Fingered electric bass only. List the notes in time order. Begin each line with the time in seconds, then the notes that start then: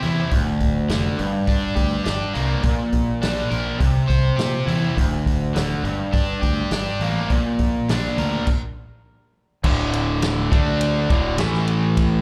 0.03 E2
0.32 D1
0.60 D1
0.90 F1
1.20 G1
1.47 G1
1.76 D2
2.07 G1
2.36 C2
2.64 A#1
2.92 A#1
3.24 A#1
3.52 A#1
3.80 C2
4.10 C2
4.38 A#2
4.67 E2
4.97 D1
5.26 D1
5.56 D1
5.84 G1
6.13 G1
6.42 D2
6.71 G1
7.00 A1
7.31 A#1
7.60 A#1
7.89 A#1
8.17 D2
9.64 D1
10.52 D2
11.10 D1
11.38 A1